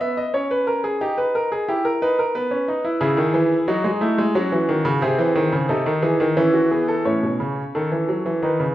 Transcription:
0.01 0.22 B3 medium
0.01 0.17 E5 medium
0.17 0.34 D#5 medium
0.34 0.99 C#4 medium
0.34 0.50 C#5 medium
0.51 0.67 B4 medium
0.67 0.84 A#4 medium
0.84 1.00 G#4 medium
1.01 1.66 D#4 medium
1.01 1.17 G4 medium
1.18 1.34 B4 medium
1.35 1.51 A#4 medium
1.52 1.68 G#4 medium
1.68 1.89 E4 medium
1.68 1.84 G4 medium
1.85 2.01 A#4 medium
2.02 2.22 D#4 medium
2.02 2.18 B4 medium
2.19 2.35 A#4 medium
2.35 2.51 B3 medium
2.35 2.99 B4 medium
2.51 2.67 C#4 medium
2.68 2.84 D#4 medium
2.85 2.99 E4 medium
3.01 3.17 C#3 medium
3.01 3.66 E4 medium
3.01 3.66 G#4 medium
3.17 3.34 D#3 medium
3.34 3.55 E3 medium
3.68 3.84 F#3 medium
3.68 4.33 D#4 medium
3.68 3.89 F#4 medium
3.84 4.01 G#3 medium
4.01 4.18 A3 medium
4.01 4.22 E4 medium
4.18 4.35 G#3 medium
4.35 4.52 F#3 medium
4.35 5.00 C#4 medium
4.35 5.00 F#4 medium
4.52 4.68 E3 medium
4.69 4.85 D#3 medium
4.85 5.02 C#3 loud
5.02 5.19 C3 loud
5.02 5.68 C4 medium
5.02 5.67 G#4 medium
5.18 5.35 E3 medium
5.35 5.52 D#3 medium
5.52 5.69 C#3 medium
5.69 5.86 C3 medium
5.69 6.35 D#4 medium
5.69 5.90 A4 medium
5.86 6.03 D#3 medium
6.02 6.19 E3 medium
6.02 6.24 G#4 medium
6.20 6.37 D#3 medium
6.37 7.03 E3 medium
6.37 6.58 C#4 medium
6.37 6.54 E4 medium
6.53 6.71 F#4 medium
6.71 6.93 B3 medium
6.71 6.88 G#4 medium
6.88 7.05 A4 medium
7.05 7.22 A2 medium
7.05 8.39 C#4 medium
7.05 7.72 C#5 medium
7.23 7.40 B2 medium
7.40 7.61 C#3 medium
7.75 7.91 D#3 medium
7.75 8.41 A4 medium
7.92 8.08 E3 medium
8.09 8.25 F#3 medium
8.26 8.42 E3 medium
8.42 8.59 D#3 medium
8.42 8.64 D#4 medium
8.42 8.75 B4 medium
8.60 8.75 C#3 medium

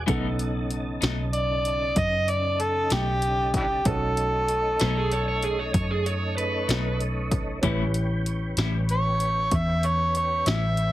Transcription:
0.06 0.98 B1 medium
0.06 0.26 B2 medium
0.06 3.82 C#3 medium
0.06 0.26 F#3 medium
0.06 0.27 A3 medium
0.06 3.81 B3 medium
0.06 0.27 D#4 medium
0.06 3.82 D#4 soft
0.06 3.82 D#4 medium
0.06 3.82 A4 medium
0.06 3.83 A4 medium
0.06 3.82 F#5 soft
0.06 kick medium
0.06 closed hi-hat medium
0.39 closed hi-hat soft
0.71 closed hi-hat soft
1.01 1.93 B1 medium
1.01 1.21 B2 medium
1.01 1.21 F#3 soft
1.01 1.21 A3 medium
1.01 1.20 D#4 medium
1.01 snare medium
1.01 closed hi-hat medium
1.33 1.99 D5 medium
1.33 closed hi-hat medium
1.65 closed hi-hat soft
1.96 2.87 F#2 medium
1.96 2.31 D#5 medium
1.96 kick medium
1.96 closed hi-hat medium
2.28 2.62 D5 medium
2.28 closed hi-hat soft
2.60 2.92 A4 medium
2.60 closed hi-hat soft
2.90 3.82 B1 medium
2.90 3.10 B2 soft
2.90 3.10 F#3 medium
2.90 3.10 A3 medium
2.90 3.09 D#4 medium
2.90 3.51 G4 medium
2.90 snare medium
2.90 closed hi-hat medium
3.22 closed hi-hat medium
3.54 3.65 D4 soft
3.54 3.64 E4 soft
3.54 3.88 G4 medium
3.54 kick medium
3.54 closed hi-hat medium
3.85 4.76 B1 medium
3.85 7.59 A3 medium
3.85 7.59 C#4 soft
3.85 7.60 C#4 medium
3.85 7.59 D#4 medium
3.85 7.60 D#4 soft
3.85 7.60 F#4 soft
3.85 5.75 A4 medium
3.85 7.60 A4 medium
3.85 kick medium
3.85 closed hi-hat medium
4.17 closed hi-hat medium
4.49 closed hi-hat medium
4.80 5.71 B1 medium
4.80 4.99 B2 medium
4.80 4.99 F#3 medium
4.80 4.99 A3 medium
4.80 4.99 D#4 medium
4.80 4.96 C#5 medium
4.80 snare medium
4.80 closed hi-hat medium
4.97 5.12 G#4 medium
5.12 5.27 C#5 medium
5.12 closed hi-hat medium
5.28 5.43 C#5 medium
5.43 5.59 G#4 medium
5.43 closed hi-hat soft
5.59 5.73 C#5 medium
5.74 6.65 F#2 medium
5.74 5.90 C#5 medium
5.74 kick medium
5.74 closed hi-hat medium
5.91 6.06 G#4 medium
6.06 6.37 C#5 medium
6.06 closed hi-hat soft
6.37 6.99 B4 medium
6.37 closed hi-hat medium
6.68 7.59 B1 medium
6.68 6.88 B2 medium
6.68 6.88 F#3 medium
6.68 6.88 A3 medium
6.68 6.88 D#4 medium
6.68 snare loud
6.68 closed hi-hat medium
7.00 closed hi-hat soft
7.31 kick medium
7.31 closed hi-hat medium
7.61 8.54 A1 medium
7.61 7.82 A2 medium
7.61 7.82 G3 medium
7.61 10.92 B3 medium
7.61 10.92 C#4 medium
7.61 7.83 C#4 medium
7.61 10.92 E4 soft
7.61 7.83 E4 medium
7.61 10.92 G4 soft
7.61 10.92 G4 medium
7.61 10.92 B4 medium
7.61 kick medium
7.61 closed hi-hat medium
7.94 closed hi-hat medium
8.26 closed hi-hat medium
8.57 9.48 A1 medium
8.57 8.77 A2 soft
8.57 8.77 G3 medium
8.57 8.77 C#4 medium
8.57 8.77 E4 medium
8.57 snare medium
8.57 closed hi-hat medium
8.89 9.57 C#5 medium
8.89 closed hi-hat medium
9.20 closed hi-hat medium
9.51 10.42 E2 medium
9.51 9.87 E5 medium
9.51 kick medium
9.51 closed hi-hat medium
9.83 10.16 C#5 medium
9.83 closed hi-hat medium
10.15 10.49 C#5 medium
10.15 closed hi-hat medium
10.46 10.92 A1 medium
10.46 10.66 A2 soft
10.46 10.66 G3 soft
10.46 10.66 C#4 medium
10.46 10.65 E4 medium
10.46 10.92 E5 medium
10.46 snare medium
10.46 closed hi-hat medium
10.77 closed hi-hat soft

